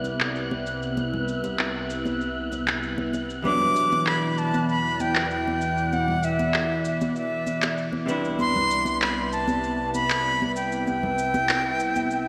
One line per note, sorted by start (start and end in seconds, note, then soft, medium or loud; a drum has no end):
0.00 3.41 C2 medium
0.00 3.09 C3 medium
0.00 3.41 C3 medium
0.00 3.10 G3 medium
0.00 3.10 B3 medium
0.00 3.41 B3 medium
0.00 3.11 D4 medium
0.00 3.12 E4 medium
0.00 3.41 E4 medium
0.00 0.62 D5 medium
0.00 12.28 F#6 medium
0.04 high conga medium
0.04 cabasa medium
0.20 clap medium
0.20 cabasa soft
0.36 cabasa soft
0.51 high conga medium
0.66 3.42 E5 medium
0.66 cabasa medium
0.82 cabasa soft
0.97 high conga medium
0.97 cabasa soft
1.14 low conga medium
1.28 cabasa medium
1.44 muted conga medium
1.44 high conga medium
1.44 cabasa soft
1.59 clap medium
1.59 cabasa soft
1.90 cabasa medium
2.06 high conga medium
2.06 cabasa soft
2.21 cabasa soft
2.52 muted conga soft
2.52 high conga medium
2.52 cabasa medium
2.67 clap medium
2.67 muted conga soft
2.67 cabasa soft
2.83 cabasa soft
2.98 high conga medium
3.13 muted conga soft
3.13 cabasa medium
3.30 cabasa soft
3.42 8.04 E2 medium
3.42 8.05 E2 medium
3.42 8.05 B2 medium
3.42 8.05 E3 medium
3.42 8.05 G3 medium
3.42 8.05 B3 medium
3.42 8.05 E4 medium
3.42 10.52 D5 medium
3.42 4.09 D6 loud
3.42 high conga medium
3.42 cabasa soft
3.47 8.05 F#3 medium
3.47 8.06 D4 medium
3.60 low conga medium
3.76 cabasa medium
3.92 muted conga medium
3.92 high conga medium
3.92 cabasa soft
4.07 4.40 B5 medium
4.07 clap medium
4.07 cabasa soft
4.38 4.69 A5 medium
4.38 cabasa medium
4.54 high conga medium
4.54 cabasa soft
4.69 5.02 B5 medium
4.69 cabasa soft
5.00 5.31 G5 medium
5.00 high conga medium
5.00 cabasa medium
5.15 clap medium
5.15 cabasa soft
5.31 5.95 G5 medium
5.31 cabasa soft
5.48 high conga medium
5.61 cabasa medium
5.77 cabasa soft
5.92 6.26 F#5 medium
5.92 high conga medium
5.92 cabasa soft
6.08 low conga medium
6.23 6.86 E5 medium
6.23 cabasa medium
6.39 muted conga medium
6.39 high conga medium
6.39 cabasa soft
6.54 clap medium
6.54 cabasa soft
6.85 7.15 E5 medium
6.85 cabasa medium
7.01 high conga medium
7.01 cabasa soft
7.16 7.74 E5 medium
7.16 cabasa soft
7.47 muted conga soft
7.47 high conga medium
7.47 cabasa medium
7.62 clap medium
7.62 muted conga medium
7.62 cabasa soft
7.78 cabasa soft
7.93 high conga medium
8.06 12.28 C2 medium
8.06 12.28 C3 medium
8.06 12.28 G3 medium
8.06 12.28 B3 medium
8.06 12.28 E4 medium
8.06 muted conga soft
8.06 cabasa medium
8.10 12.28 D4 medium
8.10 12.28 E4 medium
8.25 cabasa soft
8.39 8.98 C6 loud
8.39 high conga medium
8.39 cabasa soft
8.56 low conga medium
8.71 cabasa medium
8.85 muted conga medium
8.85 high conga medium
8.85 cabasa soft
9.02 9.30 B5 medium
9.02 clap medium
9.02 cabasa soft
9.33 9.90 A5 medium
9.33 cabasa medium
9.48 high conga medium
9.48 cabasa soft
9.64 cabasa soft
9.94 10.52 B5 loud
9.94 high conga medium
9.94 cabasa medium
10.10 clap medium
10.10 cabasa soft
10.25 cabasa soft
10.42 high conga medium
10.56 12.28 E5 medium
10.56 10.85 G5 medium
10.56 cabasa medium
10.72 cabasa soft
10.87 12.28 G5 medium
10.87 high conga medium
10.87 cabasa soft
11.03 low conga medium
11.18 cabasa medium
11.34 muted conga medium
11.34 high conga medium
11.34 cabasa soft
11.49 clap medium
11.49 cabasa soft
11.80 cabasa medium
11.96 high conga medium
11.96 cabasa soft
12.11 cabasa soft